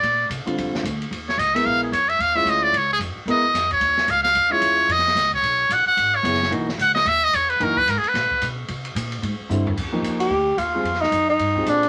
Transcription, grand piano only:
X:1
M:4/4
L:1/8
Q:"Swing" 1/4=222
K:Bbmix
V:1 name="Grand piano"
z3 [D,G,CF]3 z2 | [K:Ebphr] z3 [A,CFB]3 z2 | z [A,DF=F]3 z4 | [A,CFB] z6 z |
z [A,DF=F]3 z4 | z6 [G,CFA] z | [F,B,EG] z6 z | [F,B,EG] z6 z |
z6 [=D,=G,=C=E] z | [K:Fdor] z [F,B,EG]3 z3 [G,CFA] | z4 z [CFGA]3 |]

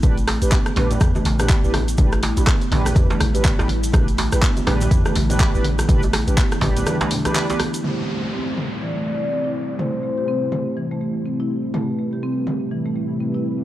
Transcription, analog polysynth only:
X:1
M:4/4
L:1/16
Q:"Swing 16ths" 1/4=123
K:Am
V:1 name="Analog polysynth"
[DGB] z2 [DGB] z2 [DGB]3 [DGB] z [DGB]2 [DGB] z2 | [DGB] z2 [DGB] z2 [DGB]3 [DGB] z [DGB]2 [DGB] z2 | [DGB] z2 [DGB] z2 [DGB]3 [DGB] z [DGB]2 [DGB] z2 | [DGB] z2 [DGB] z2 [DGB]3 [DGB] z [DGB]2 [DGB] z2 |
[A,,CGc]16- | [A,,CGc]16 | [A,,CGB]16 |]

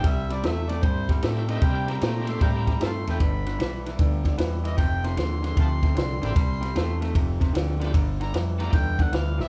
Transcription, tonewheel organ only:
X:1
M:4/4
L:1/8
Q:"Swing" 1/4=152
K:Cmix
V:1 name="Tonewheel organ"
z6 [CDEGB]2 | [B,CDEG]4- [B,CDEG] z3 | z8 | z6 z [B,CDEG] |
z6 z [A,=B,DFG] | z3 [A,=B,DFG] z4 |]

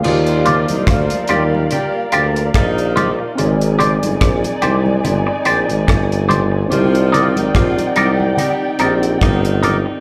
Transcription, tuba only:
X:1
M:4/4
L:1/16
Q:"Swing 16ths" 1/4=72
K:Eb
V:1 name="Tuba" clef=bass
E,,3 C,, D,, z E,,2 z2 D,,2 B,,,3 z | A,,,3 G,,, B,,, z C,,2 G,,, z B,,, A,,, G,,,4 | C,,3 A,,, B,,, z C,,2 z2 B,,,2 G,,,3 z |]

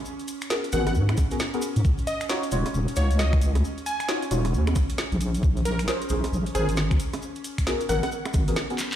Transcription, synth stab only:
X:1
M:4/4
L:1/16
Q:"Swing 16ths" 1/4=134
K:Ebm
V:1 name="Synth stab"
z4 [CGAB] z [CGAB] z4 [CGAB] z [CGAB] z2 | z4 [EFGd] z [EFGd] z3 [EFGd]6- | [EFGd]4 [EFGd] z [EFGd] z8 z | z4 [DAB=c] z [DABc] z3 [DABc]4 z2 |
z4 [CGAB] z [CGAB] z4 [CGAB] z [CGAB] z2 |]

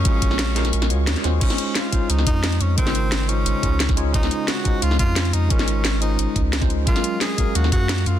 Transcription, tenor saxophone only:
X:1
M:4/4
L:1/8
Q:1/4=176
K:Db
V:1 name="Tenor saxophone"
D6 z2 | D2 F2 E E2 D | C3 D4 z | E2 G2 F F2 E |
D3 E2 z3 | F2 A2 G G2 F |]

